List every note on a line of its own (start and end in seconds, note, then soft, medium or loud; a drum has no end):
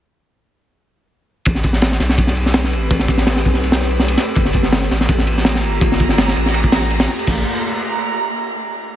1.45 1.99 A1 loud
1.45 7.23 A3 medium
1.45 4.33 C4 medium
1.45 4.33 G4 medium
1.45 4.33 B4 medium
1.45 kick loud
1.45 ride medium
1.55 snare soft
1.64 kick medium
1.64 ride medium
1.73 snare soft
1.82 snare loud
1.82 ride medium
1.92 snare soft
2.00 2.75 B1 loud
2.00 snare soft
2.00 ride medium
2.09 snare soft
2.18 kick loud
2.18 ride medium
2.27 snare soft
2.37 ride medium
2.46 snare soft
2.54 snare loud
2.54 ride loud
2.64 snare medium
2.73 2.89 A1 medium
2.73 ride medium
2.90 3.44 A1 loud
2.90 kick loud
2.90 ride medium
2.99 snare soft
3.08 kick loud
3.08 ride medium
3.18 snare medium
3.27 snare loud
3.27 ride medium
3.36 snare medium
3.45 4.17 B1 loud
3.45 kick medium
3.45 ride medium
3.54 snare soft
3.64 ride medium
3.72 snare loud
3.72 ride medium
3.81 snare soft
3.90 ride medium
3.99 snare medium
4.08 ride medium
4.18 snare medium
4.18 ride medium
4.35 4.89 G1 loud
4.35 7.24 A#3 medium
4.35 7.24 F4 medium
4.35 7.24 G4 medium
4.35 7.28 A#5 medium
4.35 kick loud
4.35 ride medium
4.45 snare soft
4.53 kick medium
4.53 ride medium
4.63 snare soft
4.72 snare loud
4.72 ride medium
4.82 snare soft
4.91 5.65 A1 loud
4.91 snare soft
4.91 ride medium
5.01 snare medium
5.09 kick loud
5.09 ride medium
5.19 snare soft
5.27 ride medium
5.38 snare soft
5.45 snare loud
5.45 ride medium
5.55 snare medium
5.64 5.80 G1 medium
5.64 ride medium
5.81 6.35 G1 loud
5.81 kick loud
5.81 ride medium
5.92 snare soft
6.00 kick loud
6.00 ride medium
6.09 snare medium
6.18 snare loud
6.18 ride medium
6.28 snare medium
6.36 7.08 A1 loud
6.36 ride medium
6.46 snare soft
6.54 ride medium
6.64 kick medium
6.72 snare loud
6.72 ride medium
6.82 snare soft
6.90 ride medium
7.00 snare loud
7.00 ride medium
7.08 snare soft
7.19 ride medium
7.27 7.44 A1 loud
7.27 kick loud
7.27 crash medium